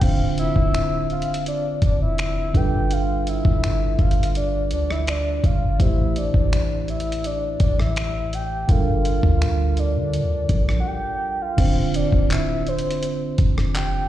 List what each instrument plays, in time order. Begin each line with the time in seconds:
0.00 808-style bass D1, tine electric piano D3 C4 D4 F4 C5, soft synth lead F5, kick, closed hi-hat, crash
0.38 808-style bass F1, soft synth lead E5, closed hi-hat
0.56 808-style bass D1, kick
0.74 finger snap, closed hi-hat
1.10 soft synth lead F5, closed hi-hat
1.22 closed hi-hat
1.34 closed hi-hat
1.46 soft synth lead D5, closed hi-hat
1.82 808-style bass F1, soft synth lead D5, kick, closed hi-hat
2.02 soft synth lead E5
2.18 soft synth lead E5, finger snap, closed hi-hat
2.53 808-style bass G1, tine electric piano G3 D4 F4 A4 B4, soft synth lead G5, kick, closed hi-hat
2.91 soft synth lead F5, closed hi-hat
3.27 soft synth lead E5, closed hi-hat
3.45 808-style bass G1, kick
3.64 finger snap, closed hi-hat
3.99 808-style bass G1, soft synth lead F5, kick, closed hi-hat
4.11 closed hi-hat
4.23 closed hi-hat
4.35 soft synth lead D5, closed hi-hat
4.71 808-style bass D2, soft synth lead D5, closed hi-hat
4.91 soft synth lead E5, cross-stick
5.07 soft synth lead D5, finger snap, closed hi-hat
5.44 808-style bass G1, soft synth lead F5, kick, closed hi-hat
5.78 808-style bass A1, tine electric piano A2 A3 E4 G4 C5, soft synth lead E5, kick, closed hi-hat
6.16 soft synth lead D5, closed hi-hat
6.34 808-style bass A1, kick
6.53 finger snap, closed hi-hat
6.88 soft synth lead E5, closed hi-hat
7.00 closed hi-hat
7.12 closed hi-hat
7.24 soft synth lead D5, closed hi-hat
7.60 808-style bass A1, soft synth lead D5, kick, closed hi-hat
7.80 soft synth lead E5, cross-stick
7.96 soft synth lead E5, finger snap, closed hi-hat
8.33 soft synth lead G5, closed hi-hat
8.68 808-style bass G1, tine electric piano G3 D4 F4 A4 A#4, soft synth lead F5, kick, closed hi-hat
9.05 closed hi-hat
9.23 808-style bass D2, kick
9.42 finger snap, closed hi-hat
9.77 soft synth lead D5, closed hi-hat
9.96 808-style bass D3
10.14 closed hi-hat
10.23 808-style bass D2
10.49 808-style bass A#1, kick, closed hi-hat
10.69 cross-stick
10.80 soft synth lead F#5
10.87 soft synth lead G5
11.41 soft synth lead F5
11.57 808-style bass D1, tine electric piano D3 C4 D4 F4 C5, kick, closed hi-hat, crash
11.94 808-style bass F1, soft synth lead D5, closed hi-hat
12.12 808-style bass D1, kick
12.31 soft synth lead E5, clap, closed hi-hat
12.67 soft synth lead C5, closed hi-hat
12.79 closed hi-hat
12.91 closed hi-hat
13.03 closed hi-hat
13.38 808-style bass F1, kick, closed hi-hat
13.58 cross-stick
13.75 soft synth lead G5, clap, closed hi-hat